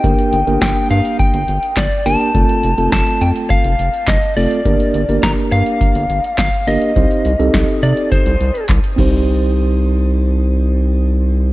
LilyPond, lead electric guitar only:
\new Staff \with { instrumentName = "Lead electric guitar" } { \time 4/4 \key c \dorian \tempo 4 = 104 g''4 g''8 f''8 g''4 d''8 a''8~ | a''4 a''8 g''8 f''4 ees''8 d''8~ | d''4 bes''8 f''4. f''8 ees''8~ | ees''4. d''8 c''4 r4 |
r1 | }